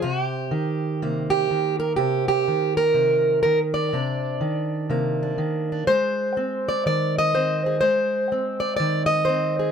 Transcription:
steel-string acoustic guitar
0.02 C3 F#4
0.22 G4
0.51 D#3
1.02 C3 A#3
1.30 G4
1.51 D#3
1.80 A#4
1.96 C3 G4
2.28 G4
2.48 D#3
2.77 A#4
2.94 C3
3.43 D#3 A#4
3.74 D5
3.93 C3 D4
4.41 D#3
4.90 C3 A#3
5.23 D4
5.38 D#3
5.72 D4
5.87 G#3 C5
6.37 C4
6.68 D5
6.86 D#3 D5
7.18 D#5
7.35 C4 C5
7.66 G#4
7.81 G#3 C5
8.32 C4
8.60 D5
8.76 D#3 D5
9.06 D#5
9.25 C4 C5
9.59 G#4

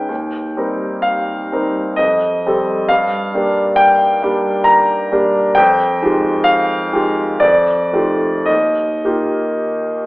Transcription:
grand piano
Already playing: G#3 C#4 D#4 B4 G5
0.09 D#2
0.57 G3 C4 D#4 A#4
1.02 F5
1.52 G3 C4 D#4 A#4
1.96 F2 D#5
2.46 G3 C4 G4 A4
2.89 G2 F5
3.34 G3 A#3 D4 G4
3.76 G5
4.22 G3 A#3 D4 G4
4.64 A#5
5.11 G3 A#3 D4 G4
5.55 F2 G5
6.02 D#3 G#3 F4 G4
6.44 F5
6.93 D#3 G#3 F4 G4
7.40 F2 D5
7.93 D#3 A3 F4 G4
8.46 D#2 D#5
9.05 D#3 A#3 F4 G4

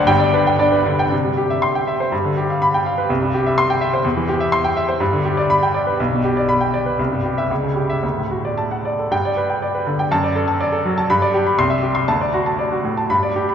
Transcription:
grand piano
Already playing: D2 D4 C5 D5 F#5
0.06 G1 G2 G5
0.19 D5
0.34 D4 B4
0.47 G5
0.59 D4 D5
0.72 B4
0.86 D3
0.99 G5
1.12 C3
1.24 G3
1.37 G4
1.50 E5
1.62 C6
1.75 G5
1.87 E5
2.00 C5
2.12 G2
2.25 D3
2.37 G4
2.50 F5
2.62 B5
2.74 G5
2.86 F5
2.98 B4
3.10 C2
3.22 G2
3.34 G4
3.46 E5
3.58 C6
3.70 G5
3.81 E5
3.94 C5
4.04 E2
4.17 E3
4.29 G4
4.40 E5
4.52 C6
4.64 G5
4.77 E5
4.89 C5
5.00 G2
5.13 D3
5.25 G4
5.37 D5
5.50 B5
5.63 G5
5.74 D5
5.87 B4
6.00 B1
6.12 B2
6.25 G4
6.37 D5
6.49 B5
6.61 G5
6.74 D5
6.86 B4
6.99 C2
7.12 G2
7.25 G4
7.38 E5
7.51 C#2
7.64 C#3
7.76 G4
7.90 E5
8.03 D2
8.17 A2
8.30 F#4
8.45 D5
8.58 A5
8.71 F#5
8.85 D5
8.99 A4
9.11 G2 G5
9.25 D5
9.37 B4
9.50 G5
9.62 D5
9.75 B4
9.87 D3
9.99 G5
10.11 F#2 A5
10.24 D5
10.36 A4
10.48 A5
10.60 D5
10.72 A4
10.85 F#3
10.98 A5
11.10 G2 B5
11.22 D5
11.34 G4
11.47 B5
11.58 C2 C6
11.70 E5
11.83 G4
11.95 C6
12.08 D2 A5
12.21 D5
12.34 F#4
12.46 A5
12.59 D5
12.72 F#4
12.84 A2
12.97 A5
13.10 G2 B5
13.23 D5
13.36 G4
13.49 B5

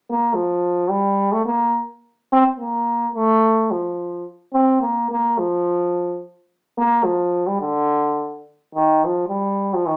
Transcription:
euphonium
0.10 A#3
0.35 F3
0.90 G3
1.32 A3
1.46 A#3
2.32 C4
2.57 A#3
3.14 A3
3.71 F3
4.53 C4
4.81 A#3
5.11 A#3
5.38 F3
6.78 A#3
7.04 F3
7.47 G3
7.61 D3
8.75 D#3
9.05 F3
9.28 G3
9.74 F3
9.87 D#3

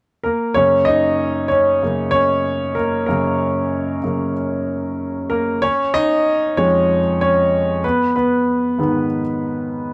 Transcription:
grand piano
0.23 A#3 A#4
0.54 F#2 C#3 A#3 C#4 C#5
0.85 D#4 D#5
1.48 C#4 C#5
1.83 F#2 C#3 A#3
2.11 C#4 C#5
2.75 A#3 A#4
3.06 F#2 C#3 A#3 A#4
4.04 F#2 C#3 A#3
5.30 A#3 A#4
5.62 C#4 C#5
5.94 D#4 D#5
6.57 F2 F3 G#3 C#4 C#5
7.21 C#4 C#5
7.84 B3 B4
8.16 B3 B4
8.79 G#2 D#3 B3

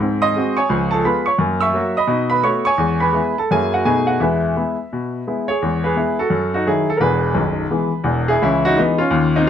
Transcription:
grand piano
0.00 G#2 C4
0.22 D#5 C6 D#6
0.36 G#3 C4 F#4
0.57 C#5 G#5 C#6
0.69 C#2 F3
0.91 A4 A5
1.05 G#3 B3 F4 B4 B5
1.26 C#5 C#6
1.38 F#2 A#3
1.61 E5 C#6 E6
1.74 F#3 A#3 F#4
1.97 D#5 B5 D#6
2.07 B2 D#4
2.30 B4 B5
2.43 A3 B3 F#4 C#5 C#6
2.65 C#5 G#5 C#6
2.78 E2 G#3
3.00 B4 G#5 B5
3.12 G#3 B3 E4
3.38 A4 A5
3.50 F#2 F#3 A#3 E4 G#4 G#5
3.74 F#4 F#5
3.85 B2 A3 B3 D#4 G#4 G#5
4.07 F#4 F#5
4.20 E2 G#3 E4 B4 E5
4.56 G#3 B3 E4
4.93 B2
5.27 G#3 B3 E4
5.48 G#4 C#5
5.62 E2 G#3
5.84 G#4 B4
5.96 G#3 B3 E4
6.19 F#4 A4
6.30 F#2
6.54 D#4 F#4
6.67 D#3 F#3 D#4 E4 G#4
6.90 A4
6.97 E1 E2 A#4 B4
7.02 G#4
7.34 B0 B1
7.71 E3 G#3 B3
8.04 E1 E2
8.28 E4 G#4
8.42 C#2 E3 C#4 E4
8.65 D#4 F#4
8.76 E3 G#3 B3 D#4
8.98 C#4 F4
9.11 D#2
9.36 C4 D#4

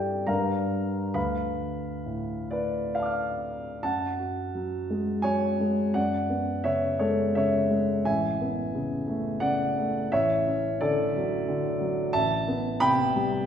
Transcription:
grand piano
Already playing: G2 E4 G4 A4 D5 G5 A5 D6
0.27 G2 D4 G4 A#4 F5 A#5
1.14 D2 B4 F5 B5
2.06 A2
2.51 B4 D5
2.95 D5 F5
3.00 A5 D6
3.06 F6
3.83 F#2 F#5 A5
4.19 F#4
4.55 F#3
4.90 G#3
5.22 F#3 C#5 G#5
5.61 G#3
5.94 F#2 D5 F#5
6.30 B3
6.64 C#3 C#5 E5
6.99 G#3 A4 C#5
7.35 C#3 C#5 E5
7.70 G#3
8.05 A1 E5 G#5
8.41 B3
8.75 C#3
9.07 A3
9.40 C#3 D5 F#5
9.78 A3
10.12 A1 C#5 E5
10.47 C#4
10.81 D3 A4 D5
11.16 F#3
11.48 D3
11.81 F#3
12.13 A1 E5 A5
12.48 B3
12.80 C3 G5 B5
13.16 G3

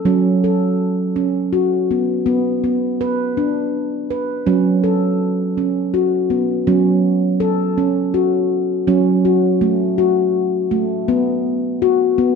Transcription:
handpan
0.05 F#3 C#4
0.44 A4
1.16 C#4
1.53 F#4
1.91 B3
2.26 B3
2.64 B3
3.01 B4
3.37 D4
4.11 B4
4.46 F#3 C#4
4.84 A4
5.58 C#4
5.94 F#4
6.30 B3
6.67 F#3 C#4
7.40 A4
7.78 C#4
8.14 F#4
8.87 F#3 C#4
9.25 F#4
9.61 A3
9.98 F#4
10.71 A3
11.08 B3
11.82 F#4
12.18 B3

